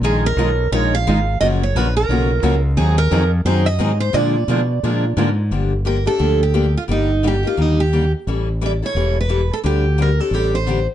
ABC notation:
X:1
M:4/4
L:1/16
Q:"Swing" 1/4=175
K:Bbphr
V:1 name="Steel-string acoustic guitar"
A2 B6 d2 f6 | e2 d2 c2 B8 z2 | A2 B4 z2 =c2 e4 c2 | =d12 z4 |
[K:Gm] z4 B2 A4 G4 F2 | E4 G2 F2 E2 G4 z2 | z4 d2 ^c4 =B4 A2 | G4 B2 A2 G2 c4 z2 |]
V:2 name="Steel-string acoustic guitar"
[E,A,EFB]2 z2 [E,A,EFB] z3 [E,A,EFB]2 z2 [E,A,EFB] z3 | [G,DFB]2 z2 [G,DFB] z3 [G,DFB]2 z2 [G,DFB] z3 | [E,G,=CEA]2 z2 [E,G,CEA] z3 [E,G,CEA]2 z2 [E,G,CEA] z3 | [F,A,=DFB]2 z2 [F,A,DFB] z3 [F,A,DFB]2 z2 [F,A,DFB] z3 |
[K:Gm] z16 | z16 | z16 | z16 |]
V:3 name="Steel-string acoustic guitar"
[E,A,EFB]2 z2 [E,A,EFB] z3 [E,A,EFB]2 z2 [E,A,EFB] z3 | [D,F,B,DG]2 z2 [D,F,B,DG] z3 [D,F,B,DG]2 z2 [D,F,B,DG] z3 | [E,G,=CEA]2 z2 [E,G,CEA] z3 [E,G,CEA]2 z2 [E,G,CEA] z3 | [=D,F,B,=DA]2 z2 [D,F,B,DA] z3 [D,F,B,DA]2 z2 [D,F,B,DA] z3 |
[K:Gm] [D,F,B,DG]2 z2 [D,F,B,DG] z [B,DG]2 [D,F,B,DG]2 z2 [D,F,B,DG] z3 | [D,G,B,EG]2 z2 [D,G,B,EG] z [B,EG]2 [D,G,B,EG]2 z2 [D,G,B,EG] z3 | [=E,G,^C=EA]2 z2 [E,G,CEA] z [CEA]2 [E,G,CEA]2 z2 [E,G,CEA] z3 | [D,G,CDG]2 z2 [D,G,CDG] z [CDG]2 [D,G,CDG]2 z2 [D,G,CDG] z3 |]
V:4 name="Fingered electric bass" clef=bass
B,,,4 C,,4 B,,,4 A,,,4 | G,,,4 B,,,4 C,,4 D,,4 | E,,4 F,,4 G,,4 A,,4 | B,,4 C,4 B,,4 A,,4 |
[K:Gm] G,,,8 D,,8 | G,,,8 E,,8 | A,,,8 =E,,,8 | D,,8 A,,,8 |]